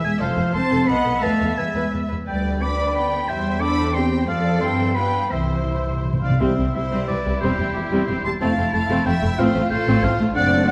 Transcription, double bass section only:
0.04 0.11 E1 soft
0.20 0.27 F1 medium
0.37 0.43 F1 soft
0.54 0.60 F1 soft
0.70 0.77 F1 medium
0.87 0.94 B1 soft
1.04 1.11 B1 soft
1.22 1.29 E2 medium
1.40 1.47 E2 soft
1.57 1.64 E2 soft
1.75 1.82 E2 medium
1.93 1.99 E2 soft
2.10 2.17 E2 soft
2.28 3.25 D2 soft
3.29 4.28 E2 medium
4.28 4.61 F2 medium
4.62 5.32 G2 medium
5.33 6.23 C2 medium
6.41 6.48 C2 medium
6.58 6.65 C2 soft
6.75 6.81 C2 soft
6.93 6.99 C2 medium
7.09 7.15 C2 soft
7.25 7.31 C2 soft
7.42 7.49 E1 medium
7.59 7.65 E1 soft
7.75 7.82 E1 soft
7.92 7.98 E1 medium
8.09 8.15 E1 soft
8.24 8.31 E1 soft
8.40 8.47 F1 medium
8.56 8.63 F1 soft
8.73 8.80 F1 soft
8.89 8.96 F1 medium
9.06 9.12 F1 medium
9.22 9.28 F1 soft
9.38 9.45 A1 medium
9.55 9.61 A1 medium
9.71 9.77 A1 medium
9.87 9.93 A1 medium
10.02 10.09 A1 medium
10.19 10.26 A1 medium
10.35 10.71 F#1 medium

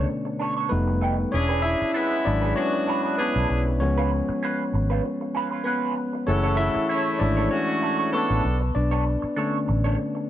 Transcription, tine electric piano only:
0.00 0.67 B2 soft
0.00 0.73 D3 soft
0.00 0.71 A3 soft
0.00 0.72 B3 medium
0.00 0.72 C#4 soft
0.00 0.72 D4 medium
0.00 0.69 B4 medium
0.00 0.67 C#5 soft
0.00 0.72 D5 medium
0.69 1.29 G3 medium
0.69 1.30 A3 soft
0.69 1.29 B3 medium
0.69 1.30 D#4 medium
0.69 1.34 B4 medium
1.32 1.62 C#4 medium
1.32 1.64 C#5 medium
1.62 2.22 E4 medium
1.62 2.21 E5 loud
2.25 3.15 F#3 medium
2.25 3.15 G#3 soft
2.25 2.55 D4 medium
2.25 2.57 D5 medium
2.56 3.15 C#4 medium
2.56 3.20 C#5 medium
3.18 3.77 B3 medium
3.18 3.82 B4 medium
3.80 4.69 F3 medium
3.80 4.69 G#3 soft
3.80 4.70 B3 medium
3.80 4.39 C#4 medium
3.80 4.38 C#5 medium
5.64 6.24 B3 medium
5.64 6.29 B4 medium
6.27 7.16 E3 medium
6.27 7.17 A3 medium
6.27 6.57 C#4 medium
6.27 7.17 G#4 soft
6.27 6.59 C#5 medium
6.57 7.17 E4 medium
6.57 7.21 E5 loud
7.19 7.48 E3 soft
7.19 7.48 G#3 soft
7.19 7.48 A3 medium
7.19 7.49 D4 medium
7.19 7.52 D5 medium
7.51 8.10 C#4 medium
7.51 8.15 C#5 medium
8.13 8.72 B3 medium
8.13 8.77 B4 medium
8.75 9.33 D4 medium
8.75 9.33 D5 medium
9.36 9.79 D3 medium
9.36 9.79 A3 soft
9.36 9.79 C#4 medium

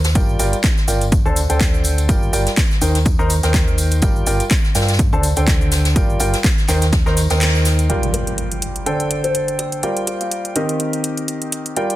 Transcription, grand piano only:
0.15 0.37 G3 medium
0.15 0.37 F4 medium
0.15 0.37 A#4 medium
0.15 0.37 D5 medium
0.15 0.37 G5 medium
0.39 0.54 G3 medium
0.39 0.54 F4 medium
0.39 0.54 A#4 medium
0.39 0.54 D5 medium
0.39 0.54 G5 medium
0.88 1.03 F4 medium
0.88 1.03 A#4 medium
0.88 1.03 D5 medium
0.88 1.03 G5 medium
1.25 1.38 D3 loud
1.25 1.38 D4 medium
1.25 1.38 A4 medium
1.25 1.38 C5 medium
1.25 1.38 A5 loud
1.50 2.06 D3 medium
1.50 2.06 D4 medium
1.50 2.06 A4 medium
1.50 2.06 C5 medium
1.50 2.06 G5 medium
2.09 2.30 G3 medium
2.09 2.30 F4 medium
2.09 2.30 A#4 medium
2.09 2.30 D5 medium
2.09 2.30 G5 medium
2.33 2.48 G3 medium
2.33 2.48 F4 medium
2.33 2.48 A#4 medium
2.33 2.48 D5 medium
2.33 2.48 G5 medium
2.81 2.96 D#3 medium
2.81 2.96 D#4 medium
2.81 2.96 A#4 medium
2.81 2.96 C5 medium
2.81 2.96 G5 medium
3.19 3.31 D#3 medium
3.19 3.31 D#4 medium
3.19 3.31 A#4 medium
3.19 3.31 C5 medium
3.19 3.31 A#5 loud
3.43 4.00 D#3 medium
3.43 4.00 D#4 medium
3.43 4.00 A#4 medium
3.43 4.00 C5 medium
3.43 4.00 G5 medium
4.02 4.24 G3 medium
4.02 4.24 F4 medium
4.02 4.24 A#4 medium
4.02 4.24 D5 medium
4.02 4.24 G5 medium
4.27 4.41 G3 medium
4.27 4.41 F4 medium
4.27 4.41 A#4 medium
4.27 4.41 D5 medium
4.27 4.41 G5 medium
4.75 4.90 F4 medium
4.75 4.90 A#4 medium
4.75 4.90 D5 medium
4.75 4.90 G5 medium
5.13 5.25 D3 loud
5.13 5.25 D4 medium
5.13 5.25 A4 medium
5.13 5.25 C5 medium
5.13 5.25 A5 loud
5.37 5.93 D3 medium
5.37 5.93 D4 medium
5.37 5.93 A4 medium
5.37 5.93 C5 medium
5.37 5.93 G5 medium
5.96 6.18 G3 medium
5.96 6.18 F4 medium
5.96 6.18 A#4 medium
5.96 6.18 D5 medium
5.96 6.18 G5 medium
6.20 6.35 G3 medium
6.20 6.35 F4 medium
6.20 6.35 A#4 medium
6.20 6.35 D5 medium
6.20 6.35 G5 medium
6.68 6.83 D#3 medium
6.68 6.83 D#4 medium
6.68 6.83 A#4 medium
6.68 6.83 C5 medium
6.68 6.83 G5 medium
7.06 7.18 D#3 medium
7.06 7.18 D#4 medium
7.06 7.18 A#4 medium
7.06 7.18 C5 medium
7.06 7.18 A#5 loud
7.30 7.87 D#3 medium
7.30 7.87 D#4 medium
7.30 7.87 A#4 medium
7.30 7.87 C5 medium
7.30 7.87 G5 medium
7.89 8.84 G3 medium
7.89 8.84 F4 medium
7.89 8.84 A#4 medium
7.89 8.84 D5 medium
7.89 8.84 G5 medium
8.86 9.80 D3 medium
8.86 9.80 D4 medium
8.86 9.80 A4 medium
8.86 9.80 C5 medium
8.86 9.80 G5 medium
9.83 10.53 G3 medium
9.83 10.53 F4 medium
9.83 10.53 A#4 medium
9.83 10.53 D5 medium
9.83 10.53 G5 medium
10.56 11.74 D#3 medium
10.56 11.74 C4 medium
10.56 11.74 G4 medium
10.56 11.74 A#4 medium
10.56 11.74 D#5 medium
11.76 11.96 G3 medium
11.76 11.96 F4 medium
11.76 11.96 A#4 medium
11.76 11.96 D5 medium
11.76 11.96 G5 medium

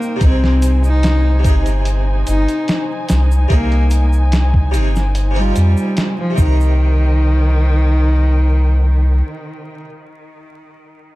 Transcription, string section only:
0.00 0.18 D#4 medium
0.00 0.17 A#4 medium
0.00 6.34 C5 medium
0.00 0.17 G5 medium
0.21 6.34 D#4 medium
0.21 6.34 G#5 medium
6.38 9.82 D#4 medium
6.38 9.82 A#4 medium
6.38 9.82 C5 medium
6.38 9.82 G5 medium

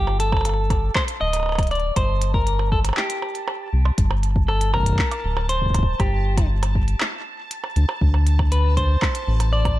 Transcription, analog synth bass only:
0.00 0.90 G1 loud
1.21 1.91 D1 medium
1.96 2.92 G1 loud
3.73 3.91 C2 medium
3.98 4.93 G1 loud
5.24 5.94 D1 medium
6.00 6.95 G1 loud
7.76 7.85 D2 medium
8.01 8.97 D2 loud
9.27 9.79 A1 medium

